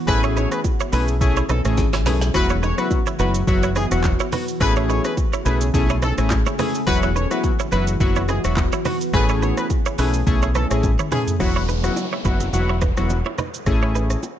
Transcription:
0.07 A1 C#3 A3 B3 C#4 E4 G#4 B4, kick, cross-stick, low conga, shaker
0.23 E4 C#5, shaker
0.36 A3 D#4 G#4 B4 C#5, shaker
0.52 B3 G#4 B4, cross-stick, shaker
0.64 kick, high bongo, shaker
0.80 E4 C#5, shaker
0.93 B1 A3 B3 C#4 D#4 E4 G#4 B4, open hi-hat, shaker
1.08 shaker
1.21 A3 C#4 E4 G#4, kick, low conga, shaker
1.36 E4 C#5, shaker
1.49 B1 E3 C#4 D#4 A4 B4, cross-stick, low bongo, shaker
1.65 A1 A3 C#4 E4 G#4, cross-stick, shaker
1.78 G#1, kick, snare, high bongo, low bongo, shaker
1.93 E4 C#5, snare, high bongo, shaker
2.06 B1 E3 A3 C#4 D#4 E4 G#4 B4, snare, open hi-hat, high bongo, low bongo, low conga, shaker
2.21 snare, shaker
2.34 E1 E3 F#3 B3 E4 F#4 B4, kick, cross-stick, low conga, shaker
2.49 E4 C#5, shaker
2.62 C#4 D#4 A4 B4 C#5, shaker
2.78 F#3 B3 E4 F#4 B4, cross-stick, shaker
2.91 kick, high bongo, shaker
3.06 E4 C#5, shaker
3.19 F#1 F#3 B3 D#4 E4 F#4 B4, shaker
3.35 shaker
3.47 F#1 F#3 B3 E4 F#4, kick, low conga, shaker
3.63 E4 C#5, shaker
3.76 G#3 D#4 E4 G#4 B4, cross-stick, low bongo, shaker
3.91 E1 F#3 B3 E4 F#4, cross-stick, shaker
4.04 kick, clap, high bongo, low bongo, shaker
4.20 E4 C#5, high bongo, shaker
4.32 B3 D#4 F#4 B4, cross-stick, open hi-hat, high bongo, low bongo, low conga, shaker
4.48 shaker
4.60 A1 C#3 A3 B3 C#4 E4 G#4 B4, kick, cross-stick, low conga, shaker
4.76 E4 C#5, shaker
4.89 A3 D#4 G#4 B4 C#5, shaker
5.04 B3 G#4 B4, cross-stick, shaker
5.17 kick, high bongo, shaker
5.33 E4 C#5, shaker
5.45 B1 A3 B3 C#4 D#4 E4 G#4 B4, shaker
5.61 shaker
5.74 B1 A3 C#4 E4 G#4, kick, low conga, shaker
5.89 E4 C#5, shaker
6.02 E3 C#4 D#4 A4 B4, cross-stick, low bongo, shaker
6.18 A1 A3 C#4 E4 G#4, cross-stick, shaker
6.30 kick, clap, high bongo, low bongo, shaker
6.46 E4 C#5, high bongo, shaker
6.59 E3 A3 C#4 D#4 E4 G#4 B4, cross-stick, open hi-hat, high bongo, low bongo, low conga, shaker
6.75 shaker
6.87 E1 E3 F#3 B3 E4 F#4 B4, kick, cross-stick, low conga, shaker
7.02 E4 C#5, shaker
7.15 C#4 D#4 A4 B4 C#5, shaker
7.31 F#3 B3 E4 F#4 B4, cross-stick, shaker
7.44 kick, high bongo, shaker
7.59 E4 C#5, shaker
7.72 F#1 F#3 B3 D#4 E4 F#4 B4, shaker
7.87 shaker
8.00 F#1 F#3 B3 E4 F#4, kick, low conga, shaker
8.16 E4 C#5, shaker
8.28 G#3 D#4 E4 G#4 B4, cross-stick, low bongo, shaker
8.44 E1 F#3 B3 E4 F#4, cross-stick, shaker
8.57 kick, clap, high bongo, low bongo, shaker
8.72 E4 C#5, high bongo, shaker
8.85 B3 D#4 F#4 B4, cross-stick, open hi-hat, high bongo, low bongo, low conga, shaker
9.01 shaker
9.13 A1 C#3 A3 B3 C#4 E4 G#4 B4, kick, cross-stick, low conga, shaker
9.29 E4 C#5, shaker
9.42 A3 D#4 G#4 B4 C#5, shaker
9.57 B3 G#4 B4, cross-stick, shaker
9.70 kick, high bongo, shaker
9.86 E4 C#5, shaker
9.98 B1 A3 B3 C#4 D#4 E4 G#4 B4, open hi-hat, shaker
10.14 shaker
10.26 B1 A3 C#4 E4 G#4, kick, low conga, shaker
10.42 E4 C#5, shaker
10.55 E3 C#4 D#4 A4 B4, cross-stick, low bongo, shaker
10.70 A1 A3 C#4 E4 G#4, cross-stick, shaker
10.83 kick, high tom, high bongo, low bongo, shaker
10.99 E4 C#5, mid tom, shaker
11.11 E3 A3 C#4 D#4 E4 G#4 B4, mid tom, open hi-hat, high bongo, low bongo, low conga, shaker
11.27 floor tom, shaker
11.40 E1 F#3 B3 E4 F#4, kick, cross-stick, downlifter, low conga, shaker
11.56 E4 C#5
11.69 D#4 B4, shaker
11.83 F#3 B3 E4 F#4, cross-stick, shaker
11.96 high bongo, shaker
12.13 E4 C#5
12.25 F#1 F#3 B3 D#4 E4 F#4 B4, kick, shaker
12.40 low bongo, shaker
12.53 E1 F#3 B3 E4 F#4, low conga, shaker
12.69 E4 C#5
12.81 D#4 B4, kick, cross-stick, low bongo, shaker
12.97 E1 F#3 B3 E4 F#4, cross-stick, shaker
13.10 high bongo, low bongo, shaker
13.26 E4 C#5, high bongo
13.38 D#4 B4, cross-stick, high bongo, low conga, shaker
13.54 shaker
13.66 A1 A3 C#4 E4 G#4, kick, cross-stick, low conga, shaker
13.83 E4 C#5
13.95 D#4 B4, shaker
14.10 cross-stick, shaker
14.23 high bongo, shaker

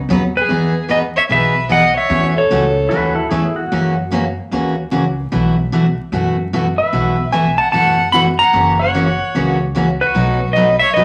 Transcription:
0.09 D#2 B2 C#3 F#3 B3 D#4 B4
0.37 G#4 B4
0.49 E2 E3 B3 D#4 G#4
0.89 E3 B3 D#4 G#4 B4 D#5
1.16 C#5 E5
1.29 B1 E3 B3 D#4 G#4 B4 E5
1.69 E3 B3 D#4 G#4 D#5 F#5
1.95 C#5 E5
2.10 E2 E3 A3 C#4 F#4
2.36 A4 C#5
2.50 C#2 E3 A3 C#4 F#4
2.89 D#2 E3 A3 C#4 F#4 B4
3.15 E4 A4
3.29 E2 E3 A3 C#4 E4 F#4 G#4
3.56 F#4
3.72 F#2 C#3 E3 A#3 C#4 F#4
4.11 C#3 E3 A#3 C#4 F#4
4.51 D#2 C#3 E3 A#3 C#4 F#4
4.91 C#2 C#3 E3 A#3 C#4 F#4
5.32 B1 B2 E3 A3 E4 F#4
5.72 B2 E3 A3 E4 F#4
6.12 F#2 B2 E3 A3 E4 F#4
6.53 B2 E3 A3 E4 F#4
6.78 B4 E5
6.93 B1 B2 E3 A3 E4 F#4
7.32 B2 E3 A3 E4 F#4 E5 G#5
7.58 F#5 A5
7.72 F#2 B2 E3 A3 E4 F#4 F#5 A5
8.12 B2 E3 A3 E4 F#4 F#5 B5
8.39 F#5 A#5
8.53 F#1 C#3 E3 A#3 C#4 F#4
8.79 C#5 F#5
8.94 C#3 E3 A#3 C#4 F#4
9.35 C#2 C#3 E3 A#3 C#4 F#4
9.75 C#3 E3 A#3 C#4 F#4
10.01 F#4 B4
10.15 B1 B2 F#3 A3 D#4 F#4
10.53 B2 F#3 A3 D#4 F#4 B4 D#5
10.79 C#5 E5
10.94 F#2 B2 F#3 A3 D#4 F#4 B4 D#5

